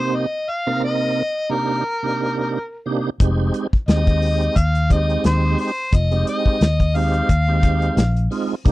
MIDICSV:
0, 0, Header, 1, 6, 480
1, 0, Start_track
1, 0, Tempo, 681431
1, 332, Time_signature, 4, 2, 24, 8
1, 6141, End_track
2, 0, Start_track
2, 0, Title_t, "Harmonica"
2, 0, Program_c, 0, 22
2, 0, Note_on_c, 0, 72, 89
2, 104, Note_on_c, 0, 75, 84
2, 114, Note_off_c, 0, 72, 0
2, 348, Note_on_c, 0, 77, 96
2, 358, Note_off_c, 0, 75, 0
2, 580, Note_off_c, 0, 77, 0
2, 589, Note_on_c, 0, 75, 95
2, 1064, Note_on_c, 0, 70, 82
2, 1075, Note_off_c, 0, 75, 0
2, 2018, Note_off_c, 0, 70, 0
2, 2737, Note_on_c, 0, 75, 84
2, 3222, Note_on_c, 0, 77, 94
2, 3232, Note_off_c, 0, 75, 0
2, 3463, Note_on_c, 0, 75, 85
2, 3474, Note_off_c, 0, 77, 0
2, 3697, Note_off_c, 0, 75, 0
2, 3705, Note_on_c, 0, 72, 82
2, 3922, Note_off_c, 0, 72, 0
2, 3945, Note_on_c, 0, 72, 76
2, 4189, Note_on_c, 0, 75, 87
2, 4200, Note_off_c, 0, 72, 0
2, 4421, Note_off_c, 0, 75, 0
2, 4425, Note_on_c, 0, 75, 91
2, 4904, Note_on_c, 0, 77, 94
2, 4915, Note_off_c, 0, 75, 0
2, 5858, Note_off_c, 0, 77, 0
2, 6141, End_track
3, 0, Start_track
3, 0, Title_t, "Tonewheel organ"
3, 0, Program_c, 1, 16
3, 0, Note_on_c, 1, 48, 68
3, 0, Note_on_c, 1, 58, 66
3, 0, Note_on_c, 1, 60, 65
3, 0, Note_on_c, 1, 63, 63
3, 0, Note_on_c, 1, 67, 80
3, 184, Note_off_c, 1, 48, 0
3, 185, Note_off_c, 1, 58, 0
3, 186, Note_off_c, 1, 63, 0
3, 187, Note_off_c, 1, 60, 0
3, 188, Note_off_c, 1, 67, 0
3, 469, Note_on_c, 1, 48, 61
3, 471, Note_on_c, 1, 60, 60
3, 472, Note_on_c, 1, 58, 58
3, 473, Note_on_c, 1, 63, 59
3, 475, Note_on_c, 1, 70, 77
3, 862, Note_off_c, 1, 48, 0
3, 863, Note_off_c, 1, 58, 0
3, 863, Note_off_c, 1, 60, 0
3, 864, Note_off_c, 1, 63, 0
3, 865, Note_off_c, 1, 70, 0
3, 1052, Note_on_c, 1, 48, 72
3, 1053, Note_on_c, 1, 58, 68
3, 1054, Note_on_c, 1, 62, 61
3, 1057, Note_on_c, 1, 67, 81
3, 1058, Note_on_c, 1, 63, 66
3, 1294, Note_off_c, 1, 48, 0
3, 1294, Note_off_c, 1, 58, 0
3, 1295, Note_off_c, 1, 62, 0
3, 1297, Note_off_c, 1, 63, 0
3, 1297, Note_off_c, 1, 67, 0
3, 1427, Note_on_c, 1, 48, 64
3, 1431, Note_on_c, 1, 58, 58
3, 1431, Note_on_c, 1, 62, 54
3, 1434, Note_on_c, 1, 63, 51
3, 1436, Note_on_c, 1, 67, 64
3, 1821, Note_off_c, 1, 48, 0
3, 1823, Note_off_c, 1, 58, 0
3, 1823, Note_off_c, 1, 62, 0
3, 1824, Note_off_c, 1, 63, 0
3, 1825, Note_off_c, 1, 67, 0
3, 2011, Note_on_c, 1, 48, 83
3, 2014, Note_on_c, 1, 58, 74
3, 2015, Note_on_c, 1, 62, 75
3, 2017, Note_on_c, 1, 63, 83
3, 2017, Note_on_c, 1, 67, 88
3, 2182, Note_off_c, 1, 48, 0
3, 2183, Note_off_c, 1, 58, 0
3, 2183, Note_off_c, 1, 62, 0
3, 2184, Note_off_c, 1, 63, 0
3, 2184, Note_off_c, 1, 67, 0
3, 2252, Note_on_c, 1, 56, 78
3, 2255, Note_on_c, 1, 60, 72
3, 2256, Note_on_c, 1, 63, 73
3, 2261, Note_on_c, 1, 67, 85
3, 2584, Note_off_c, 1, 56, 0
3, 2585, Note_off_c, 1, 60, 0
3, 2586, Note_off_c, 1, 63, 0
3, 2588, Note_off_c, 1, 67, 0
3, 2731, Note_on_c, 1, 56, 68
3, 2734, Note_on_c, 1, 60, 59
3, 2735, Note_on_c, 1, 63, 61
3, 2737, Note_on_c, 1, 67, 71
3, 3216, Note_off_c, 1, 56, 0
3, 3217, Note_off_c, 1, 60, 0
3, 3218, Note_off_c, 1, 63, 0
3, 3219, Note_off_c, 1, 67, 0
3, 3447, Note_on_c, 1, 56, 71
3, 3452, Note_on_c, 1, 60, 66
3, 3454, Note_on_c, 1, 63, 64
3, 3454, Note_on_c, 1, 67, 78
3, 4023, Note_off_c, 1, 56, 0
3, 4025, Note_off_c, 1, 60, 0
3, 4026, Note_off_c, 1, 67, 0
3, 4027, Note_off_c, 1, 63, 0
3, 4305, Note_on_c, 1, 56, 70
3, 4309, Note_on_c, 1, 60, 62
3, 4312, Note_on_c, 1, 63, 62
3, 4315, Note_on_c, 1, 67, 75
3, 4700, Note_off_c, 1, 56, 0
3, 4702, Note_off_c, 1, 60, 0
3, 4703, Note_off_c, 1, 63, 0
3, 4705, Note_off_c, 1, 67, 0
3, 4895, Note_on_c, 1, 56, 72
3, 4897, Note_on_c, 1, 60, 72
3, 4901, Note_on_c, 1, 63, 65
3, 4901, Note_on_c, 1, 67, 81
3, 5136, Note_off_c, 1, 56, 0
3, 5136, Note_off_c, 1, 60, 0
3, 5138, Note_off_c, 1, 63, 0
3, 5139, Note_off_c, 1, 67, 0
3, 5267, Note_on_c, 1, 56, 59
3, 5269, Note_on_c, 1, 60, 55
3, 5273, Note_on_c, 1, 63, 57
3, 5274, Note_on_c, 1, 67, 69
3, 5661, Note_off_c, 1, 56, 0
3, 5662, Note_off_c, 1, 60, 0
3, 5664, Note_off_c, 1, 63, 0
3, 5664, Note_off_c, 1, 67, 0
3, 5850, Note_on_c, 1, 56, 88
3, 5853, Note_on_c, 1, 60, 83
3, 5855, Note_on_c, 1, 63, 84
3, 5858, Note_on_c, 1, 65, 97
3, 6021, Note_off_c, 1, 56, 0
3, 6022, Note_off_c, 1, 60, 0
3, 6023, Note_off_c, 1, 63, 0
3, 6025, Note_off_c, 1, 65, 0
3, 6092, Note_on_c, 1, 58, 81
3, 6092, Note_on_c, 1, 62, 75
3, 6094, Note_on_c, 1, 63, 72
3, 6096, Note_on_c, 1, 67, 94
3, 6141, Note_off_c, 1, 58, 0
3, 6141, Note_off_c, 1, 62, 0
3, 6141, Note_off_c, 1, 63, 0
3, 6141, Note_off_c, 1, 67, 0
3, 6141, End_track
4, 0, Start_track
4, 0, Title_t, "Fingered electric bass"
4, 0, Program_c, 2, 33
4, 2255, Note_on_c, 2, 29, 89
4, 2464, Note_off_c, 2, 29, 0
4, 2733, Note_on_c, 2, 39, 82
4, 3153, Note_off_c, 2, 39, 0
4, 3214, Note_on_c, 2, 39, 88
4, 3634, Note_off_c, 2, 39, 0
4, 3697, Note_on_c, 2, 39, 91
4, 3905, Note_off_c, 2, 39, 0
4, 4175, Note_on_c, 2, 29, 94
4, 4384, Note_off_c, 2, 29, 0
4, 4657, Note_on_c, 2, 39, 79
4, 5075, Note_off_c, 2, 39, 0
4, 5138, Note_on_c, 2, 39, 95
4, 5556, Note_off_c, 2, 39, 0
4, 5613, Note_on_c, 2, 34, 96
4, 5823, Note_off_c, 2, 34, 0
4, 6098, Note_on_c, 2, 36, 95
4, 6141, Note_off_c, 2, 36, 0
4, 6141, End_track
5, 0, Start_track
5, 0, Title_t, "Muted fingered electric bass strokes"
5, 2627, Note_on_c, 9, 29, 32
5, 2698, Note_off_c, 9, 29, 0
5, 4548, Note_on_c, 9, 29, 33
5, 4618, Note_off_c, 9, 29, 0
5, 6141, End_track
6, 0, Start_track
6, 0, Title_t, "Drums"
6, 2255, Note_on_c, 9, 36, 93
6, 2256, Note_on_c, 9, 42, 70
6, 2325, Note_off_c, 9, 36, 0
6, 2327, Note_off_c, 9, 42, 0
6, 2493, Note_on_c, 9, 42, 57
6, 2564, Note_off_c, 9, 42, 0
6, 2628, Note_on_c, 9, 36, 71
6, 2698, Note_off_c, 9, 36, 0
6, 2733, Note_on_c, 9, 42, 74
6, 2742, Note_on_c, 9, 38, 98
6, 2803, Note_off_c, 9, 42, 0
6, 2812, Note_off_c, 9, 38, 0
6, 2867, Note_on_c, 9, 36, 80
6, 2868, Note_on_c, 9, 42, 33
6, 2938, Note_off_c, 9, 36, 0
6, 2938, Note_off_c, 9, 42, 0
6, 2973, Note_on_c, 9, 46, 60
6, 3043, Note_off_c, 9, 46, 0
6, 3108, Note_on_c, 9, 42, 35
6, 3178, Note_off_c, 9, 42, 0
6, 3213, Note_on_c, 9, 42, 74
6, 3214, Note_on_c, 9, 36, 72
6, 3283, Note_off_c, 9, 42, 0
6, 3284, Note_off_c, 9, 36, 0
6, 3347, Note_on_c, 9, 42, 39
6, 3417, Note_off_c, 9, 42, 0
6, 3453, Note_on_c, 9, 42, 61
6, 3455, Note_on_c, 9, 36, 83
6, 3524, Note_off_c, 9, 42, 0
6, 3525, Note_off_c, 9, 36, 0
6, 3590, Note_on_c, 9, 42, 31
6, 3660, Note_off_c, 9, 42, 0
6, 3691, Note_on_c, 9, 42, 74
6, 3700, Note_on_c, 9, 38, 91
6, 3762, Note_off_c, 9, 42, 0
6, 3771, Note_off_c, 9, 38, 0
6, 3932, Note_on_c, 9, 46, 73
6, 4002, Note_off_c, 9, 46, 0
6, 4173, Note_on_c, 9, 42, 75
6, 4175, Note_on_c, 9, 36, 89
6, 4243, Note_off_c, 9, 42, 0
6, 4245, Note_off_c, 9, 36, 0
6, 4308, Note_on_c, 9, 42, 36
6, 4378, Note_off_c, 9, 42, 0
6, 4418, Note_on_c, 9, 42, 55
6, 4488, Note_off_c, 9, 42, 0
6, 4548, Note_on_c, 9, 36, 73
6, 4618, Note_off_c, 9, 36, 0
6, 4657, Note_on_c, 9, 42, 81
6, 4666, Note_on_c, 9, 38, 106
6, 4727, Note_off_c, 9, 42, 0
6, 4737, Note_off_c, 9, 38, 0
6, 4789, Note_on_c, 9, 36, 77
6, 4789, Note_on_c, 9, 42, 39
6, 4859, Note_off_c, 9, 36, 0
6, 4860, Note_off_c, 9, 42, 0
6, 4896, Note_on_c, 9, 46, 61
6, 4967, Note_off_c, 9, 46, 0
6, 5028, Note_on_c, 9, 42, 36
6, 5098, Note_off_c, 9, 42, 0
6, 5136, Note_on_c, 9, 36, 75
6, 5138, Note_on_c, 9, 42, 73
6, 5207, Note_off_c, 9, 36, 0
6, 5208, Note_off_c, 9, 42, 0
6, 5374, Note_on_c, 9, 42, 61
6, 5375, Note_on_c, 9, 36, 78
6, 5444, Note_off_c, 9, 42, 0
6, 5446, Note_off_c, 9, 36, 0
6, 5508, Note_on_c, 9, 42, 32
6, 5579, Note_off_c, 9, 42, 0
6, 5615, Note_on_c, 9, 42, 77
6, 5624, Note_on_c, 9, 38, 99
6, 5685, Note_off_c, 9, 42, 0
6, 5695, Note_off_c, 9, 38, 0
6, 5751, Note_on_c, 9, 42, 33
6, 5822, Note_off_c, 9, 42, 0
6, 5858, Note_on_c, 9, 46, 76
6, 5928, Note_off_c, 9, 46, 0
6, 6097, Note_on_c, 9, 36, 98
6, 6098, Note_on_c, 9, 42, 66
6, 6141, Note_off_c, 9, 36, 0
6, 6141, Note_off_c, 9, 42, 0
6, 6141, End_track
0, 0, End_of_file